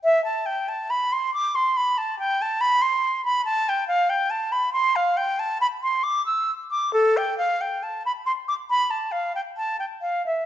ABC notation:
X:1
M:4/4
L:1/16
Q:1/4=69
K:Am
V:1 name="Flute"
e a g a b c' d' c' b a g a b c'2 b | a g f g a b c' f g a b c' d' e'2 d' | A g f g a b c' d' b a f g a g f e |]